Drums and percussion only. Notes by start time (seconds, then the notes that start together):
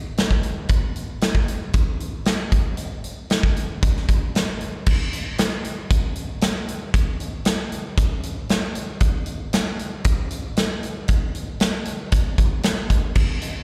0.17 snare, closed hi-hat
0.31 kick
0.43 closed hi-hat
0.69 kick, closed hi-hat
0.96 closed hi-hat
1.21 snare, closed hi-hat
1.35 kick
1.48 closed hi-hat
1.73 kick, closed hi-hat
2.00 closed hi-hat
2.25 snare, closed hi-hat
2.52 kick, closed hi-hat
2.77 closed hi-hat
3.04 closed hi-hat
3.30 snare, closed hi-hat
3.43 kick
3.56 closed hi-hat
3.83 kick, closed hi-hat
3.97 snare
4.08 kick, closed hi-hat
4.35 snare, closed hi-hat
4.60 closed hi-hat
4.86 kick, crash
5.13 closed hi-hat
5.38 snare, closed hi-hat
5.65 closed hi-hat
5.91 kick, closed hi-hat
6.15 closed hi-hat
6.41 snare, closed hi-hat
6.68 closed hi-hat
6.94 kick, closed hi-hat
7.20 closed hi-hat
7.45 snare, closed hi-hat
7.72 closed hi-hat
7.98 kick, closed hi-hat
8.23 closed hi-hat
8.49 snare, closed hi-hat
8.75 closed hi-hat
9.00 kick, closed hi-hat
9.26 closed hi-hat
9.53 snare, closed hi-hat
9.79 closed hi-hat
10.04 kick, closed hi-hat
10.31 closed hi-hat
10.57 snare, closed hi-hat
10.83 closed hi-hat
11.08 kick, closed hi-hat
11.35 closed hi-hat
11.60 snare, closed hi-hat
11.85 closed hi-hat
12.12 kick, closed hi-hat
12.38 kick, closed hi-hat
12.63 snare, closed hi-hat
12.90 kick, closed hi-hat
13.15 kick, crash
13.41 closed hi-hat